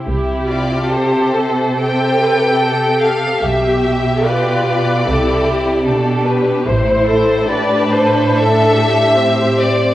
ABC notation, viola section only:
X:1
M:4/4
L:1/8
Q:1/4=74
K:C
V:1 name="Viola section"
G F G A4- A | G2 B2 A G G2 | c A d c A G3 |]